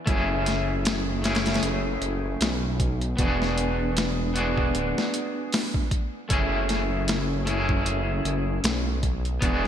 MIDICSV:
0, 0, Header, 1, 4, 480
1, 0, Start_track
1, 0, Key_signature, 3, "minor"
1, 0, Tempo, 779221
1, 43, Time_signature, 4, 2, 24, 8
1, 5960, End_track
2, 0, Start_track
2, 0, Title_t, "Clean electric guitar"
2, 0, Program_c, 0, 27
2, 35, Note_on_c, 0, 57, 82
2, 43, Note_on_c, 0, 61, 71
2, 53, Note_on_c, 0, 64, 75
2, 64, Note_on_c, 0, 68, 86
2, 734, Note_off_c, 0, 57, 0
2, 738, Note_off_c, 0, 61, 0
2, 743, Note_off_c, 0, 64, 0
2, 748, Note_off_c, 0, 68, 0
2, 750, Note_on_c, 0, 57, 78
2, 762, Note_on_c, 0, 61, 68
2, 771, Note_on_c, 0, 64, 70
2, 779, Note_on_c, 0, 68, 83
2, 1691, Note_off_c, 0, 57, 0
2, 1697, Note_off_c, 0, 61, 0
2, 1702, Note_off_c, 0, 64, 0
2, 1706, Note_off_c, 0, 68, 0
2, 1951, Note_on_c, 0, 59, 80
2, 1962, Note_on_c, 0, 62, 70
2, 1972, Note_on_c, 0, 66, 77
2, 1983, Note_on_c, 0, 68, 87
2, 2652, Note_off_c, 0, 59, 0
2, 2658, Note_off_c, 0, 62, 0
2, 2662, Note_off_c, 0, 66, 0
2, 2668, Note_off_c, 0, 68, 0
2, 2672, Note_on_c, 0, 59, 74
2, 2682, Note_on_c, 0, 62, 67
2, 2691, Note_on_c, 0, 66, 68
2, 2702, Note_on_c, 0, 68, 86
2, 3612, Note_off_c, 0, 59, 0
2, 3618, Note_off_c, 0, 62, 0
2, 3622, Note_off_c, 0, 66, 0
2, 3627, Note_off_c, 0, 68, 0
2, 3874, Note_on_c, 0, 57, 86
2, 3882, Note_on_c, 0, 61, 80
2, 3892, Note_on_c, 0, 64, 79
2, 3901, Note_on_c, 0, 68, 90
2, 4573, Note_off_c, 0, 57, 0
2, 4577, Note_off_c, 0, 61, 0
2, 4582, Note_off_c, 0, 64, 0
2, 4587, Note_off_c, 0, 68, 0
2, 4596, Note_on_c, 0, 57, 76
2, 4605, Note_on_c, 0, 61, 76
2, 4615, Note_on_c, 0, 64, 72
2, 4623, Note_on_c, 0, 68, 90
2, 5534, Note_off_c, 0, 57, 0
2, 5539, Note_off_c, 0, 61, 0
2, 5544, Note_off_c, 0, 64, 0
2, 5548, Note_off_c, 0, 68, 0
2, 5794, Note_on_c, 0, 59, 81
2, 5802, Note_on_c, 0, 62, 78
2, 5812, Note_on_c, 0, 66, 75
2, 5823, Note_on_c, 0, 68, 96
2, 5960, Note_off_c, 0, 59, 0
2, 5960, Note_off_c, 0, 62, 0
2, 5960, Note_off_c, 0, 66, 0
2, 5960, Note_off_c, 0, 68, 0
2, 5960, End_track
3, 0, Start_track
3, 0, Title_t, "Detuned saw bass"
3, 0, Program_c, 1, 39
3, 44, Note_on_c, 1, 30, 96
3, 983, Note_off_c, 1, 30, 0
3, 1002, Note_on_c, 1, 30, 98
3, 1218, Note_off_c, 1, 30, 0
3, 1243, Note_on_c, 1, 30, 95
3, 1458, Note_off_c, 1, 30, 0
3, 1484, Note_on_c, 1, 35, 95
3, 1944, Note_off_c, 1, 35, 0
3, 1964, Note_on_c, 1, 28, 109
3, 2903, Note_off_c, 1, 28, 0
3, 2923, Note_on_c, 1, 26, 83
3, 3042, Note_off_c, 1, 26, 0
3, 3881, Note_on_c, 1, 30, 99
3, 4822, Note_off_c, 1, 30, 0
3, 4841, Note_on_c, 1, 30, 99
3, 5057, Note_off_c, 1, 30, 0
3, 5082, Note_on_c, 1, 30, 91
3, 5298, Note_off_c, 1, 30, 0
3, 5323, Note_on_c, 1, 35, 99
3, 5783, Note_off_c, 1, 35, 0
3, 5802, Note_on_c, 1, 28, 107
3, 5960, Note_off_c, 1, 28, 0
3, 5960, End_track
4, 0, Start_track
4, 0, Title_t, "Drums"
4, 44, Note_on_c, 9, 36, 104
4, 45, Note_on_c, 9, 42, 80
4, 106, Note_off_c, 9, 36, 0
4, 106, Note_off_c, 9, 42, 0
4, 286, Note_on_c, 9, 42, 65
4, 294, Note_on_c, 9, 38, 42
4, 347, Note_off_c, 9, 42, 0
4, 356, Note_off_c, 9, 38, 0
4, 526, Note_on_c, 9, 42, 89
4, 534, Note_on_c, 9, 38, 112
4, 587, Note_off_c, 9, 42, 0
4, 596, Note_off_c, 9, 38, 0
4, 764, Note_on_c, 9, 42, 72
4, 773, Note_on_c, 9, 38, 89
4, 826, Note_off_c, 9, 42, 0
4, 831, Note_on_c, 9, 42, 67
4, 834, Note_off_c, 9, 38, 0
4, 840, Note_on_c, 9, 38, 90
4, 893, Note_off_c, 9, 42, 0
4, 898, Note_on_c, 9, 42, 59
4, 901, Note_off_c, 9, 38, 0
4, 907, Note_on_c, 9, 38, 81
4, 950, Note_off_c, 9, 42, 0
4, 950, Note_on_c, 9, 42, 61
4, 958, Note_off_c, 9, 38, 0
4, 958, Note_on_c, 9, 38, 81
4, 1002, Note_off_c, 9, 42, 0
4, 1002, Note_on_c, 9, 42, 83
4, 1020, Note_off_c, 9, 38, 0
4, 1064, Note_off_c, 9, 42, 0
4, 1242, Note_on_c, 9, 42, 65
4, 1304, Note_off_c, 9, 42, 0
4, 1483, Note_on_c, 9, 42, 90
4, 1492, Note_on_c, 9, 38, 125
4, 1544, Note_off_c, 9, 42, 0
4, 1553, Note_off_c, 9, 38, 0
4, 1723, Note_on_c, 9, 36, 98
4, 1723, Note_on_c, 9, 42, 65
4, 1785, Note_off_c, 9, 36, 0
4, 1785, Note_off_c, 9, 42, 0
4, 1857, Note_on_c, 9, 42, 43
4, 1919, Note_off_c, 9, 42, 0
4, 1962, Note_on_c, 9, 42, 90
4, 1963, Note_on_c, 9, 36, 109
4, 2023, Note_off_c, 9, 42, 0
4, 2024, Note_off_c, 9, 36, 0
4, 2106, Note_on_c, 9, 38, 40
4, 2167, Note_off_c, 9, 38, 0
4, 2203, Note_on_c, 9, 42, 64
4, 2264, Note_off_c, 9, 42, 0
4, 2443, Note_on_c, 9, 42, 89
4, 2452, Note_on_c, 9, 38, 114
4, 2505, Note_off_c, 9, 42, 0
4, 2514, Note_off_c, 9, 38, 0
4, 2683, Note_on_c, 9, 42, 66
4, 2745, Note_off_c, 9, 42, 0
4, 2818, Note_on_c, 9, 36, 88
4, 2880, Note_off_c, 9, 36, 0
4, 2924, Note_on_c, 9, 42, 82
4, 2986, Note_off_c, 9, 42, 0
4, 3069, Note_on_c, 9, 38, 61
4, 3130, Note_off_c, 9, 38, 0
4, 3165, Note_on_c, 9, 42, 66
4, 3226, Note_off_c, 9, 42, 0
4, 3403, Note_on_c, 9, 46, 80
4, 3412, Note_on_c, 9, 38, 114
4, 3465, Note_off_c, 9, 46, 0
4, 3474, Note_off_c, 9, 38, 0
4, 3538, Note_on_c, 9, 36, 94
4, 3599, Note_off_c, 9, 36, 0
4, 3642, Note_on_c, 9, 36, 95
4, 3643, Note_on_c, 9, 42, 66
4, 3704, Note_off_c, 9, 36, 0
4, 3704, Note_off_c, 9, 42, 0
4, 3881, Note_on_c, 9, 42, 84
4, 3882, Note_on_c, 9, 36, 105
4, 3943, Note_off_c, 9, 42, 0
4, 3944, Note_off_c, 9, 36, 0
4, 4122, Note_on_c, 9, 42, 68
4, 4130, Note_on_c, 9, 38, 44
4, 4183, Note_off_c, 9, 42, 0
4, 4192, Note_off_c, 9, 38, 0
4, 4361, Note_on_c, 9, 42, 82
4, 4369, Note_on_c, 9, 38, 110
4, 4422, Note_off_c, 9, 42, 0
4, 4431, Note_off_c, 9, 38, 0
4, 4602, Note_on_c, 9, 42, 67
4, 4663, Note_off_c, 9, 42, 0
4, 4737, Note_on_c, 9, 36, 83
4, 4799, Note_off_c, 9, 36, 0
4, 4842, Note_on_c, 9, 42, 86
4, 4904, Note_off_c, 9, 42, 0
4, 5084, Note_on_c, 9, 42, 63
4, 5146, Note_off_c, 9, 42, 0
4, 5321, Note_on_c, 9, 42, 96
4, 5330, Note_on_c, 9, 38, 119
4, 5383, Note_off_c, 9, 42, 0
4, 5391, Note_off_c, 9, 38, 0
4, 5562, Note_on_c, 9, 36, 93
4, 5562, Note_on_c, 9, 42, 62
4, 5624, Note_off_c, 9, 36, 0
4, 5624, Note_off_c, 9, 42, 0
4, 5699, Note_on_c, 9, 42, 43
4, 5760, Note_off_c, 9, 42, 0
4, 5803, Note_on_c, 9, 36, 100
4, 5803, Note_on_c, 9, 42, 85
4, 5864, Note_off_c, 9, 36, 0
4, 5864, Note_off_c, 9, 42, 0
4, 5960, End_track
0, 0, End_of_file